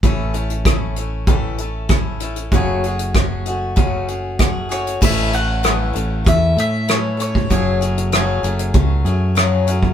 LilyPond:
<<
  \new Staff \with { instrumentName = "Mandolin" } { \time 4/4 \key a \major \tempo 4 = 96 r1 | r2. r8 cis''8 | e''8 fis''4. e''8 e''8 cis''8 cis''8~ | cis''4. r2 r8 | }
  \new Staff \with { instrumentName = "Steel-string acoustic guitar" } { \time 4/4 \key a \major <a, e a cis' e' a'>8 <a cis' e' a'>8 <a cis' e' a'>8 <a cis' e' a'>8 <a, e a cis' e' a'>8 <a cis' e' a'>8 <a cis' e' a'>8 <a cis' e' a'>8 | <fis, cis a cis' fis' gis'>8 <a cis' fis' gis'>8 <a cis' fis' gis'>8 <a cis' fis' gis'>8 <fis, cis a cis' fis' gis'>8 <a cis' fis' gis'>8 <a cis' fis' gis'>8 <a cis' fis' gis'>8 | <a, e a cis' e' a'>8 <a cis' e' a'>8 <a, e a cis' e' a'>8 <a cis' e' a'>8 <a cis' e' a'>8 <a cis' e' a'>8 <a, e a cis' e' a'>8 <a cis' e' a'>8 | <fis, cis fis a cis' gis'>8 <fis a cis' gis'>8 <fis, cis fis a cis' gis'>8 <fis a cis' gis'>8 <fis a cis' gis'>8 <fis a cis' gis'>8 <fis, cis fis a cis' gis'>8 <fis a cis' gis'>8 | }
  \new Staff \with { instrumentName = "Fingered electric bass" } { \clef bass \time 4/4 \key a \major a,,1 | fis,,1 | a,,4. a,,8 e,8 a,4. | fis,,4. fis,,8 cis,8 fis,4. | }
  \new DrumStaff \with { instrumentName = "Drums" } \drummode { \time 4/4 <hh bd>8 hh16 hh16 <hh bd ss>8 hh8 <hh bd>8 hh8 <hh bd ss>8 hh16 hh16 | <hh bd>8 hh16 hh16 <hh bd ss>8 hh8 <hh bd>8 hh8 <hh bd ss>8 hh16 hh16 | <cymc bd>8 hh8 <hh ss>8 hh8 <hh bd>8 hh8 <hh ss>8 hh16 bd16 | <hh bd>8 hh16 hh16 <hh ss>8 hh16 hh16 <hh bd>8 hh8 <hh ss>8 hh16 bd16 | }
>>